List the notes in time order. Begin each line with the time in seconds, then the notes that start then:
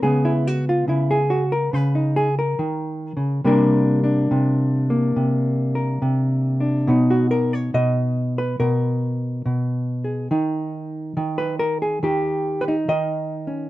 0.02 C#3 G#3 B3 G#4
0.25 E4
0.47 F#4
0.69 F4
0.88 C#3 E4
1.11 G#4
1.30 F#4
1.52 A#4
1.73 C#3 B4
1.95 D#4
2.16 G#4
2.39 A#4
2.59 D#3
3.17 C#3
3.44 C3 G3 A#3 D4 A#4
4.04 D4
4.31 C3
4.90 A#3
5.16 C3
5.75 A#4
6.02 C3
6.60 D4
6.87 B2 B3 D#4 C#5
7.10 F#4
7.31 A#4
7.53 C#5
7.74 B2 D#5
8.38 B4
8.60 B2 A#4
9.46 B2
10.04 G#4
10.31 D#3 D#4
11.17 D#3
11.38 B4
11.59 A#4
11.82 G#4
12.03 D#3 G4
12.61 B4
12.68 D#4
12.88 D#3 D#5
13.47 C#4